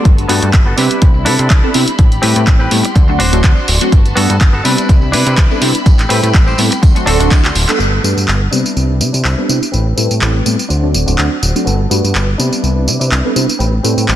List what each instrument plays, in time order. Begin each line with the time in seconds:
Already playing: analog polysynth G3 A3 B3 D4 A4, violin section F#4
0.04 analog synth bass G1, violin section B4 A5, kick, closed hi-hat, tambourine
0.18 closed hi-hat, tambourine
0.28 analog synth bass G2, analog polysynth G3 A3 B3 D4 F#4, clean electric guitar B3 F#4 A4, open hi-hat, tambourine
0.43 analog synth bass G2, closed hi-hat, tambourine
0.53 analog synth bass G1, kick, clap, closed hi-hat
0.66 clean electric guitar B3 F#4 A4, tambourine
0.76 analog synth bass C3, analog polysynth G3 B3 C4 D4 G4, clean electric guitar D4 E4 B4, violin section E4 D5 B5, open hi-hat, tambourine
0.90 closed hi-hat, tambourine
1.02 analog synth bass C2, kick, closed hi-hat, tambourine
1.14 muted clean electric guitar stroke, tambourine
1.25 analog synth bass C3, analog polysynth G3 B3 C4 D4 E4, clean electric guitar D4 E4 A4, open hi-hat, tambourine
1.39 analog synth bass C3, closed hi-hat, tambourine
1.50 analog synth bass C2, kick, clap, closed hi-hat
1.63 analog polysynth G3 B3 C4 D4 A4, tambourine
1.74 analog synth bass C3, analog polysynth G3 B3 C4 D4 E4, open hi-hat, tambourine
1.88 closed hi-hat, tambourine
1.98 analog synth bass A1, violin section G4, kick, closed hi-hat, tambourine
2.12 closed hi-hat, tambourine
2.22 analog synth bass A2, analog polysynth G3 A3 C4 E4 B4, clean electric guitar C4 G4 B4, open hi-hat, tambourine
2.35 analog synth bass A2, closed hi-hat, tambourine
2.47 analog synth bass A1, kick, clap, closed hi-hat, tambourine
2.59 clean electric guitar C4 G4 B4, tambourine
2.71 analog synth bass A2, analog polysynth G3 A3 B3 C4 E4, open hi-hat, tambourine
2.83 muted clean electric guitar stroke, closed hi-hat, tambourine
2.95 analog synth bass D2, violin section F#4 D5 C6, muted clean electric guitar stroke, kick, closed hi-hat, tambourine
3.08 analog polysynth F#3 A3 C4 D4 F#4, muted clean electric guitar stroke, tambourine
3.19 analog synth bass D1, clean electric guitar D4 F#4 C5, open hi-hat, tambourine
3.32 analog synth bass D1, analog polysynth F#3 A3 C4 D4 F#4, closed hi-hat, tambourine
3.43 analog synth bass D2, analog polysynth F#3 C4 F#4, kick, clap, closed hi-hat, tambourine
3.57 tambourine
3.68 analog synth bass D1, open hi-hat, tambourine
3.81 analog polysynth F#3 A3 C4 D4 F#4, closed hi-hat, tambourine
3.92 analog synth bass G1, violin section B4 A5, kick, closed hi-hat
4.05 closed hi-hat, tambourine
4.16 analog synth bass G2, analog polysynth G3 A3 B3 D4 F#4, clean electric guitar B3 F#4 A4, open hi-hat, tambourine
4.30 analog synth bass G2, closed hi-hat, tambourine
4.40 analog synth bass G1, kick, clap, closed hi-hat, tambourine
4.53 clean electric guitar B3 F#4 A4, tambourine
4.64 analog synth bass C3, analog polysynth G3 B3 C4 D4 G4, clean electric guitar D4 E4 B4, violin section E4 D5 B5, open hi-hat, tambourine
4.78 closed hi-hat, tambourine
4.89 analog synth bass C2, kick, closed hi-hat, tambourine
5.01 muted clean electric guitar stroke, tambourine
5.12 analog synth bass C3, analog polysynth G3 B3 C4 D4 E4, clean electric guitar D4 E4 B4, open hi-hat, tambourine
5.26 analog synth bass C3, closed hi-hat, tambourine
5.38 analog synth bass C2, kick, clap, closed hi-hat
5.50 analog polysynth G3 B3 C4 D4 A4, tambourine
5.61 analog synth bass C3, analog polysynth G3 B3 C4 D4 E4, open hi-hat, tambourine
5.75 closed hi-hat, tambourine
5.86 analog synth bass A1, violin section G4, kick, closed hi-hat, tambourine
5.98 clap, closed hi-hat, tambourine
6.09 analog synth bass A2, analog polysynth G3 A3 C4 E4 B4, clean electric guitar C4 G4 B4, open hi-hat, tambourine
6.23 analog synth bass A2, closed hi-hat, tambourine
6.34 analog synth bass A1, kick, clap, closed hi-hat, tambourine
6.46 clean electric guitar C4 G4 C5, tambourine
6.58 analog synth bass A2, analog polysynth G3 A3 B3 C4 E4, open hi-hat, tambourine
6.71 muted clean electric guitar stroke, closed hi-hat, tambourine
6.82 analog synth bass D2, violin section F#4 D5 C6, muted clean electric guitar stroke, kick, closed hi-hat, tambourine
6.95 analog polysynth F#3 A3 C4 D4 F#4, muted clean electric guitar stroke, closed hi-hat, tambourine
7.06 analog synth bass D1, analog polysynth F#3 A3 C4 D4 A4, clean electric guitar D4 F#4 A4, open hi-hat, tambourine
7.20 analog synth bass D1, analog polysynth F#3 A3 C4 D4 F#4, closed hi-hat, tambourine
7.31 analog synth bass D2, analog polysynth F#3 A3 C4 D4 E4, kick, clap, closed hi-hat, tambourine
7.45 clap, closed hi-hat, tambourine
7.55 analog synth bass D1, open hi-hat, tambourine
7.68 analog polysynth G3 A3 B3 D4 A4, clap, closed hi-hat, tambourine
7.79 analog synth bass G1, clean electric guitar B3 F#4 A4, violin section A4 F#5 B5, tambourine
8.03 analog synth bass G2, analog polysynth G3 A3 B3 D4 F#4, clean electric guitar B3 F#4 A4, tambourine
8.17 analog synth bass G2, tambourine
8.28 analog synth bass G1, clap, tambourine
8.51 analog synth bass C3, analog polysynth G3 B3 C4 D4 G4, clean electric guitar D4 E4 B4, violin section E5 B5 D6, tambourine
8.66 tambourine
8.76 analog synth bass C2, tambourine
9.00 analog synth bass C3, analog polysynth G3 B3 C4 D4 E4, tambourine
9.13 analog synth bass C3, clean electric guitar D4 E4 C5, tambourine
9.25 analog synth bass C2, clap, tambourine
9.37 analog polysynth G3 B3 C4 D4 A4
9.48 analog synth bass C3, analog polysynth G3 B3 C4 D4 E4, tambourine
9.63 tambourine
9.72 analog synth bass A1, clean electric guitar C4 G4 B4, violin section B4 G5, tambourine
9.96 analog synth bass A2, analog polysynth G3 A3 C4 E4 B4, clean electric guitar C4 G4 A4, tambourine
10.11 analog synth bass A2, tambourine
10.22 analog synth bass A1, clap, tambourine
10.45 analog synth bass A2, analog polysynth G3 A3 B3 C4 E4, tambourine
10.59 tambourine
10.69 analog synth bass D2, clean electric guitar D4 F#4 C5, violin section C5 F#5 D6, tambourine
10.82 analog polysynth F#3 A3 C4 D4 F#4
10.94 analog synth bass D1, tambourine
11.06 analog synth bass D1, analog polysynth F#3 A3 C4 D4 F#4, clean electric guitar D4 F#4 C5, tambourine
11.18 analog synth bass D2, analog polysynth F#3 A3 C4 D4 F#4, clap, tambourine
11.42 analog synth bass D1, tambourine
11.55 analog polysynth F#3 A3 C4 D4 F#4, tambourine
11.66 analog synth bass G1, clean electric guitar B3 F#4 A4, violin section A4 B5, tambourine
11.90 analog synth bass G2, analog polysynth G3 A3 B3 D4 F#4, clean electric guitar B3 F#4 B4, tambourine
12.04 analog synth bass G2, tambourine
12.15 analog synth bass G1, clap, tambourine
12.38 analog synth bass C3, analog polysynth G3 B3 C4 D4 G4, clean electric guitar D4 E4 B4, violin section B4 E5 D6, tambourine
12.53 tambourine
12.63 analog synth bass C2, tambourine
12.87 analog synth bass C3, analog polysynth G3 B3 C4 D4 E4, tambourine
12.99 analog synth bass C3, clean electric guitar D4 E4 B4, tambourine
13.11 analog synth bass C2, clap, tambourine
13.24 analog polysynth G3 B3 C4 D4 A4
13.35 analog synth bass C3, analog polysynth G3 B3 C4 D4 E4, tambourine
13.49 tambourine
13.59 analog synth bass A1, clean electric guitar C4 G4 B4, violin section G5, tambourine
13.83 analog synth bass A2, analog polysynth G3 A3 C4 E4 B4, clean electric guitar C4 G4 B4, tambourine
13.97 analog synth bass A2, tambourine
14.08 analog synth bass A1, clap, tambourine